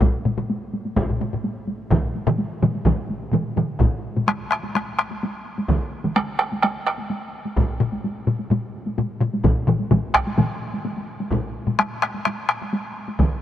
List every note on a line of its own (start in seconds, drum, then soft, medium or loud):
0.01 taiko loud
0.01 taiko low-mid medium
0.01 taiko high medium
0.14 taiko high soft
0.25 taiko low-mid medium
0.25 taiko high medium
0.38 taiko low-mid medium
0.38 taiko high soft
0.50 taiko high medium
0.62 taiko high soft
0.74 taiko high medium
0.85 taiko high soft
0.96 taiko loud
0.96 taiko low-mid medium
0.96 taiko high medium
1.08 taiko low-mid medium
1.08 taiko high soft
1.21 taiko low-mid medium
1.21 taiko high medium
1.33 taiko low-mid medium
1.44 taiko high medium
1.56 taiko high soft
1.68 taiko high soft
1.80 taiko high soft
1.91 taiko loud
1.91 taiko low-mid medium
1.91 taiko mid medium
1.91 taiko high soft
2.02 taiko high soft
2.15 taiko high soft
2.27 taiko low-mid loud
2.27 taiko mid loud
2.39 taiko high medium
2.62 taiko low-mid medium
2.62 taiko mid medium
2.62 taiko high soft
2.75 taiko high soft
2.85 taiko loud
2.85 taiko low-mid medium
2.85 taiko mid loud
2.85 taiko high medium
2.98 taiko high soft
3.10 taiko high soft
3.22 taiko high soft
3.33 taiko low-mid medium
3.33 taiko mid medium
3.33 taiko high medium
3.56 taiko low-mid medium
3.56 taiko mid medium
3.56 taiko high medium
3.69 taiko high soft
3.79 taiko medium
3.79 taiko low-mid medium
3.79 taiko high medium
4.16 taiko low-mid medium
4.16 taiko high soft
4.28 taiko rim medium
4.28 taiko high medium
4.52 taiko rim medium
4.64 taiko high medium
4.75 taiko rim medium
4.75 taiko high medium
4.99 taiko rim medium
5.11 taiko high soft
5.23 taiko high medium
5.58 taiko high medium
5.69 taiko loud
5.69 taiko mid medium
5.69 taiko high medium
6.04 taiko mid medium
6.04 taiko high medium
6.16 taiko rim medium
6.16 taiko high medium
6.39 taiko rim medium
6.52 taiko high soft
6.63 taiko rim medium
6.63 taiko high medium
6.87 taiko rim medium
6.99 taiko high soft
7.10 taiko high medium
7.45 taiko high medium
7.57 taiko loud
7.57 taiko low-mid medium
7.57 taiko high medium
7.80 taiko low-mid medium
7.92 taiko high soft
8.04 taiko high medium
8.27 taiko low-mid medium
8.39 taiko high soft
8.51 taiko low-mid medium
8.51 taiko high medium
8.86 taiko high soft
8.98 taiko low-mid medium
8.98 taiko high medium
9.21 taiko low-mid medium
9.34 taiko high medium
9.44 taiko medium
9.44 taiko low-mid medium
9.44 taiko mid medium
9.44 taiko high medium
9.68 taiko low-mid medium
9.68 taiko mid medium
9.79 taiko high medium
9.91 taiko medium
9.91 taiko low-mid medium
9.91 taiko mid medium
9.91 taiko high medium
10.14 taiko rim medium
10.14 taiko medium
10.27 taiko high medium
10.38 taiko low-mid medium
10.38 taiko mid medium
10.38 taiko high medium
10.74 taiko high soft
10.85 taiko high medium
10.97 taiko high soft
11.20 taiko high medium
11.31 taiko medium
11.31 taiko low-mid loud
11.31 taiko high medium
11.67 taiko low-mid medium
11.67 taiko high soft
11.79 taiko rim medium
11.79 taiko high medium
12.02 taiko rim medium
12.14 taiko high soft
12.25 taiko rim medium
12.25 taiko high medium
12.49 taiko rim medium
12.62 taiko high soft
12.73 taiko high medium
13.08 taiko high medium
13.19 taiko loud
13.19 taiko mid medium
13.19 taiko high medium